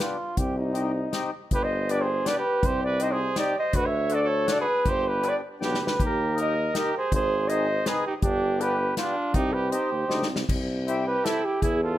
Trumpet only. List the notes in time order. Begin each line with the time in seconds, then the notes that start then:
1.54 G4
1.64 C5
1.92 B4
2.02 G#4
2.29 B4
2.38 G4
2.65 G4
2.85 B4
3.03 C5
3.12 G#4
3.40 G4
3.59 C5
3.76 F#4
3.85 C#5
4.13 A4
4.23 A4
4.49 A4
4.60 G#4
4.85 G4
5.07 G4
5.25 B4
5.64 G4
5.83 G4
5.98 G4
6.38 A#4
6.77 G4
6.98 G#4
7.15 G#4
7.50 C5
7.88 G#4
8.07 D#4
8.22 D4
8.61 G4
8.97 D4
9.34 D#4
9.54 G4
9.71 G4
11.07 G4
11.27 E4
11.46 E4
11.62 E4
11.84 F4